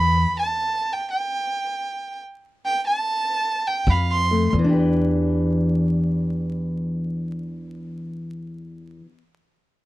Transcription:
Already playing: upright bass E2, steel-string acoustic guitar E2, fiddle B5
0.39 fiddle A5
0.93 fiddle G5
1.10 fiddle G5
2.65 fiddle G5
2.87 fiddle A5
3.67 fiddle G5
3.87 upright bass F2, steel-string acoustic guitar F2, fiddle F5 B5, kick
4.10 fiddle C6
4.31 steel-string acoustic guitar A3
4.53 upright bass E2, steel-string acoustic guitar E2
4.59 steel-string acoustic guitar E3
4.64 steel-string acoustic guitar D4
4.69 steel-string acoustic guitar G4
4.73 steel-string acoustic guitar B4

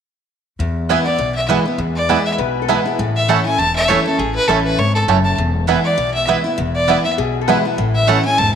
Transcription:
0.59 upright bass E2, steel-string acoustic guitar E2
0.89 steel-string acoustic guitar E3 G#3 B3 E4, mandolin B3 E4 B4 G#5, five-string banjo B3 E4
1.05 steel-string acoustic guitar B3 E4, fiddle D5
1.18 upright bass B1, steel-string acoustic guitar B2
1.35 fiddle E5
1.49 steel-string acoustic guitar E3 G#3 B3 E4, mandolin B3 E4 B4 G#5, five-string banjo B3 E4
1.66 steel-string acoustic guitar B3 E4
1.78 upright bass E2, steel-string acoustic guitar E2
1.96 fiddle D5
2.09 steel-string acoustic guitar E3 G#3 B3 E4, mandolin B3 E4 B4 G#5, five-string banjo B3 E4
2.26 fiddle E5
2.38 upright bass B1, steel-string acoustic guitar B2, resonator guitar played with a steel bar B4
2.62 resonator guitar played with a steel bar A4
2.68 steel-string acoustic guitar E3 G#3 B3 E4, mandolin B3 E4 B4 G#5, five-string banjo B3 E4, resonator guitar played with a steel bar G#4
2.85 steel-string acoustic guitar B3 E4
2.99 upright bass A1, steel-string acoustic guitar A2
3.16 fiddle E5
3.28 steel-string acoustic guitar E3 A3 C#4 E4, mandolin A3 E4 C#5 A5, five-string banjo A3 C#4 E4, fiddle F#5
3.45 steel-string acoustic guitar C#4 E4, fiddle G#5
3.58 upright bass E1, steel-string acoustic guitar E2, fiddle A5
3.76 fiddle E5
3.88 steel-string acoustic guitar E3 A3 C#4 E4, mandolin A3 E4 C#5 A5, five-string banjo A3 C#4 E4, fiddle C#5
4.06 steel-string acoustic guitar C#4 E4, fiddle A4
4.18 upright bass A1, steel-string acoustic guitar A2, fiddle G#4
4.35 fiddle B4
4.48 upright bass A1, steel-string acoustic guitar E3 A3 C#4 E4, mandolin A3 E4 C#5 A5, five-string banjo A3 C#4 E4, fiddle A4
4.65 fiddle B4
4.78 upright bass G#1, steel-string acoustic guitar G#2, fiddle C#5
4.95 fiddle A4
5.08 upright bass F#1, steel-string acoustic guitar F#2, mandolin A3 E4 C#5 A5, five-string banjo A3 C#4 E4
5.24 fiddle A5
5.38 upright bass E1, steel-string acoustic guitar E2
5.67 steel-string acoustic guitar E3 G#3 B3 E4, mandolin B3 E4 B4 G#5, five-string banjo B3 E4
5.85 fiddle D5
5.98 upright bass B1, steel-string acoustic guitar B2
6.14 fiddle E5
6.27 steel-string acoustic guitar E3 G#3 B3 E4, mandolin B3 E4 B4 G#5, five-string banjo B3 E4
6.44 steel-string acoustic guitar B3 E4
6.58 upright bass E1, steel-string acoustic guitar E2
6.75 fiddle D5
6.87 steel-string acoustic guitar E3 G#3 B3 E4, mandolin B3 E4 B4 G#5, five-string banjo B3 E4
7.04 steel-string acoustic guitar B3 E4, fiddle E5
7.18 upright bass B1, steel-string acoustic guitar B2, resonator guitar played with a steel bar G#4
7.41 resonator guitar played with a steel bar A4
7.48 steel-string acoustic guitar E3 G#3 B3 E4, mandolin B3 E4 B4 G#5, five-string banjo B3 E4, resonator guitar played with a steel bar B4
7.65 steel-string acoustic guitar B3 E4
7.78 upright bass A1, steel-string acoustic guitar A2
7.95 fiddle E5
8.07 steel-string acoustic guitar E3 A3 C#4 E4, mandolin A3 E4 C#5 A5, five-string banjo A3 C#4 E4, fiddle F#5
8.24 steel-string acoustic guitar C#4 E4, fiddle G#5
8.38 upright bass E1, steel-string acoustic guitar G#2, fiddle A5

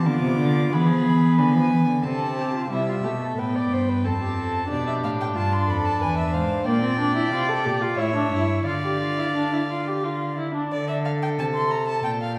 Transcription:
0.05 cello D3, viola B3, violin F4 D6
0.22 cello C3
0.38 cello D3
0.72 cello E3, viola B3, violin G#4 B5
0.88 cello F3
1.05 cello E3
1.38 cello D3, violin B4 G#5
1.54 cello F3
1.70 cello E3
1.87 cello D3
2.03 cello C3, viola C4, violin A4 A5
2.39 violin G4
2.55 violin F4
2.70 cello C3, viola G3, violin E4 E5
2.89 violin F4
3.04 cello B2, viola A3, violin G4
3.22 violin A4
3.37 cello A2, viola B3, violin B4 G5
3.56 violin D5
3.71 cello G2, violin C5
3.89 violin B4
4.04 cello F2, viola C4, violin A4 A5
4.22 violin G4
4.37 violin A4
4.70 cello B2, viola D4, violin G4 D5
4.87 violin E5
5.04 cello A2, violin F5
5.21 violin G5
5.36 cello G2, violin F4 A5
5.53 violin C6
5.68 cello F2, violin A4 B5
5.85 violin A5
6.01 cello E2, violin B4 G#5
6.18 violin E5
6.33 cello G#2, violin C5 F5
6.66 cello A#2, viola A#3, violin D5 G5
6.83 viola C4
6.99 viola D4
7.16 viola E4
7.32 cello C3, viola F4
7.49 viola A4
7.65 cello A#2, viola G4
7.81 viola F4
7.97 cello A2, viola E4, violin C#5 E5
8.16 viola D4
8.32 cello G2, viola E4
8.66 cello D3, viola F4, violin D5 F5
8.84 viola G4
9.01 viola F4
9.18 viola E4
9.36 viola D4
9.53 viola E4
9.69 viola F4
9.88 viola G4
10.04 viola F4
10.38 viola E4
10.55 viola D4
10.72 cello D3, violin A4 D5
10.88 violin E5
11.05 violin F5
11.22 violin G5
11.38 cello C3, violin A5
11.54 violin C6
11.71 violin A#5
11.88 violin A5
12.04 cello A#2, violin G5
12.22 violin F5

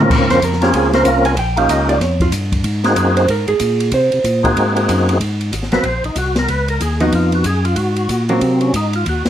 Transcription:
0.00 tonewheel organ A#3 C4 C#4 F4 A#4, mid tom
0.10 tonewheel organ A#2, kick, crash
0.20 tonewheel organ G#2
0.30 tonewheel organ F2, hollow-body jazz guitar C5, snare, ride
0.42 tonewheel organ F2, hollow-body jazz guitar A#4, kick, hi-hat pedal, ride
0.52 snare
0.61 tonewheel organ A#3 C4 C#4 F4 G#4, hollow-body jazz guitar G4, snare, ride
0.73 tonewheel organ C#2, hollow-body jazz guitar G#4, kick, ride
0.93 tonewheel organ A#3 C4 C#4 F4 A#4, hollow-body jazz guitar C5, snare, ride
1.05 tonewheel organ C2, hollow-body jazz guitar F5, kick, hi-hat pedal, ride
1.25 hollow-body jazz guitar G#5, ride
1.37 tonewheel organ A#1, hollow-body jazz guitar G5, kick, ride
1.57 tonewheel organ A#3 C#4 D#4 F4 G4, hollow-body jazz guitar F5, ride
1.69 tonewheel organ C#2, hollow-body jazz guitar D#5, kick, hi-hat pedal, ride
1.89 hollow-body jazz guitar D5, ride
2.00 tonewheel organ F2, hollow-body jazz guitar C#5, kick, snare, ride
2.20 hollow-body jazz guitar F4, kick, ride
2.32 tonewheel organ G2, kick, hi-hat pedal, ride
2.52 kick, ride
2.64 tonewheel organ G#2, kick, ride
2.84 tonewheel organ A#3 C4 D#4 F#4 G#4, snare, ride
2.96 tonewheel organ F#2, kick, hi-hat pedal, ride
3.17 hollow-body jazz guitar C5, ride
3.28 tonewheel organ G#2, hollow-body jazz guitar A#4, kick, ride
3.48 tonewheel organ G#2, hollow-body jazz guitar G#4, ride
3.60 tonewheel organ A#2, kick, hi-hat pedal, ride
3.80 ride
3.92 tonewheel organ C3, hollow-body jazz guitar C5, kick, ride
4.12 tonewheel organ C3, ride
4.24 tonewheel organ A#2, kick, hi-hat pedal, ride
4.43 tonewheel organ A#3 C4 D#4 F#4 G#4, kick, ride
4.57 tonewheel organ G#2, kick, ride
4.75 tonewheel organ A#3 C4 D#4 F#4 G#4, ride
4.88 tonewheel organ F#2, kick, hi-hat pedal, ride
5.09 ride
5.20 tonewheel organ G#2, kick, ride
5.41 ride
5.52 tonewheel organ G#1, kick, hi-hat pedal, ride
5.63 snare
5.72 tonewheel organ G#1 B4, hollow-body jazz guitar F#3 A#3 C4, snare, ride
5.83 tonewheel organ A#1 C5, kick, ride
6.04 tonewheel organ A#1 D#4, ride
6.16 tonewheel organ C2 F#4, kick, hi-hat pedal, ride
6.36 tonewheel organ A#4, snare, ride
6.48 tonewheel organ C#2 B4, kick, ride
6.68 tonewheel organ A#4, ride
6.80 tonewheel organ D#2 G#4, kick, hi-hat pedal, ride
7.00 hollow-body jazz guitar F3 B3 D#4, tonewheel organ F#4, ride
7.12 tonewheel organ F2 F4, kick, ride
7.32 tonewheel organ F#4, ride
7.44 tonewheel organ F#2 G#4, kick, hi-hat pedal, ride
7.65 tonewheel organ F4, ride
7.76 tonewheel organ G#2 F#4, kick, ride
7.96 ride
8.09 tonewheel organ A#2, kick, hi-hat pedal, ride
8.29 hollow-body jazz guitar F#3 A#3 C4, tonewheel organ C#4, ride
8.41 tonewheel organ C3 C4, kick, ride
8.61 tonewheel organ C#4, ride
8.73 tonewheel organ G#2 D#4, kick, hi-hat pedal, ride
8.93 tonewheel organ F4, ride
9.06 tonewheel organ D#2 F#4, kick, ride
9.25 tonewheel organ D#2, snare, ride

